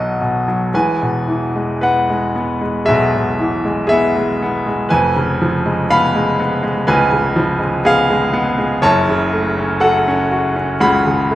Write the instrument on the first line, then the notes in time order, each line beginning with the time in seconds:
grand piano
Already playing: B1 B2 F#3 D#4 F#4 D#5
0.21 B2
0.48 F#3
0.74 E1 E2 B4 G#5
1.02 B2
1.28 E3
1.56 G#3
1.81 B3 B4 F#5
2.10 G#3
2.36 B3
2.61 G#3
2.85 B1 B2 G#4 E5
3.15 B2
3.39 E3
3.65 G#3
3.87 G#4 E5
3.92 B3
4.16 G#3
4.42 B3
4.67 G#3
4.89 F1 F2 B4 G#5
5.16 C#3
5.42 F3
5.66 G#3
5.90 B3 F5 B5
6.15 G#3
6.40 B3
6.63 G#3
6.87 C#2 C#3 B4 G#5
7.12 C#3
7.36 F3
7.59 G#3
7.85 B3 G#4 F5
8.10 G#3
8.33 B3
8.58 G#3
8.82 F#1 F#2 C#5 A5
9.09 C#3
9.33 A3
9.58 C#4
9.80 F#4 A4 F#5
10.08 C#4
10.31 F#4
10.56 C#4
10.80 C#2 C#3 F#5 B5
11.07 C#3
11.31 A3